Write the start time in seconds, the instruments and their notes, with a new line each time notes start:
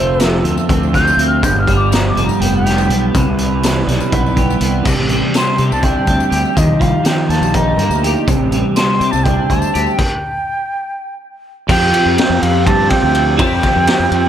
Already playing: fingered electric bass F1, clean electric guitar F2 F3 A3, harmonium C4 F4 A4, flute C5
0.20 clean electric guitar F3, snare, closed hi-hat, tambourine
0.44 fingered electric bass D2, clean electric guitar A3, closed hi-hat
0.58 tambourine
0.69 fingered electric bass D2, clean electric guitar C4, kick, closed hi-hat
0.83 tambourine
0.93 clean electric guitar F4, flute G6, kick, snare, closed hi-hat, tambourine
1.07 tambourine
1.17 fingered electric bass D2, clean electric guitar C4, closed hi-hat
1.27 flute F6
1.42 fingered electric bass G1, clean electric guitar G2, harmonium B3 G4, flute G6, kick, closed hi-hat, tambourine
1.55 fingered electric bass G1
1.60 flute F6
1.68 clean electric guitar G3, kick, closed hi-hat
1.76 flute D6
1.92 clean electric guitar F3, flute A#5, snare, closed hi-hat, tambourine
2.09 flute D6
2.16 fingered electric bass F1, clean electric guitar G3, closed hi-hat
2.25 flute A#5, tambourine
2.40 fingered electric bass F1, clean electric guitar B3, flute G5, closed hi-hat
2.53 flute G5, tambourine
2.66 clean electric guitar G4, snare, closed hi-hat, tambourine
2.78 tambourine
2.89 fingered electric bass B1, clean electric guitar B3, closed hi-hat
3.13 fingered electric bass C2, clean electric guitar C3, harmonium E4 B4, kick, closed hi-hat, tambourine
3.26 fingered electric bass C2
3.38 clean electric guitar G3, closed hi-hat
3.63 clean electric guitar E3, snare, closed hi-hat, tambourine
3.87 fingered electric bass B1, clean electric guitar G3, snare, closed hi-hat
4.00 tambourine
4.11 fingered electric bass B1, clean electric guitar B3, kick, closed hi-hat
4.26 tambourine
4.36 clean electric guitar G4, kick, closed hi-hat
4.50 tambourine
4.61 fingered electric bass C2, clean electric guitar B3, closed hi-hat
4.85 fingered electric bass C2, clean electric guitar C3, harmonium C4 D4 G4, kick, crash, tambourine
4.98 fingered electric bass A1
5.09 clean electric guitar G3, closed hi-hat
5.34 clean electric guitar G3, flute C6, snare, closed hi-hat, tambourine
5.58 fingered electric bass C3, clean electric guitar C4, closed hi-hat
5.72 fingered electric bass C2, flute A5, tambourine
5.83 clean electric guitar D4, flute G5, kick, closed hi-hat
6.07 fingered electric bass D2, clean electric guitar C4, kick, closed hi-hat
6.20 tambourine
6.30 fingered electric bass D2, clean electric guitar G4, closed hi-hat
6.45 tambourine
6.55 fingered electric bass D#2, clean electric guitar D#3, harmonium D#4 F4 G4, flute D#5, kick, closed hi-hat, tambourine
6.68 fingered electric bass C2
6.79 clean electric guitar F3, flute F5, kick, closed hi-hat
7.04 clean electric guitar F3, flute G5, snare, closed hi-hat, tambourine
7.29 fingered electric bass D#2, clean electric guitar A#3, flute A5, snare, closed hi-hat
7.40 fingered electric bass A#1, tambourine
7.54 clean electric guitar D#4, flute A#5, kick, closed hi-hat
7.77 fingered electric bass G2, clean electric guitar A#3, closed hi-hat
7.90 fingered electric bass D2, tambourine
8.03 clean electric guitar G4, closed hi-hat
8.16 tambourine
8.27 fingered electric bass C2, clean electric guitar C3, harmonium C4 D4, kick, closed hi-hat, tambourine
8.39 fingered electric bass A1
8.52 clean electric guitar G3, closed hi-hat
8.76 clean electric guitar G3, flute C6, snare, closed hi-hat, tambourine
9.00 fingered electric bass C3, clean electric guitar C4, closed hi-hat
9.11 fingered electric bass C2, flute A5, tambourine
9.24 clean electric guitar D4, flute G5, kick, closed hi-hat
9.47 fingered electric bass D2, clean electric guitar C4, flute A5, kick, closed hi-hat
9.62 tambourine
9.74 fingered electric bass D2, clean electric guitar G4, closed hi-hat
9.86 tambourine
9.96 flute G5, kick, crash
11.68 fingered electric bass F2, clean electric guitar F3 C4 F4 G4, harmonium C4 F4 G4, flute G5, kick, crash
11.94 ride
12.06 fingered electric bass F2
12.18 flute G5, snare, ride
12.30 fingered electric bass F2
12.42 fingered electric bass F2, flute F5, ride
12.66 fingered electric bass G2, flute A5, kick, ride
12.90 flute G5, kick, snare, ride
13.03 fingered electric bass D2
13.15 ride
13.38 fingered electric bass F2, clean electric guitar F3 C4 F4 G4, flute G5, kick, ride
13.63 kick, snare, ride
13.76 fingered electric bass F2
13.87 snare, ride
13.99 fingered electric bass F2
14.11 fingered electric bass F2, ride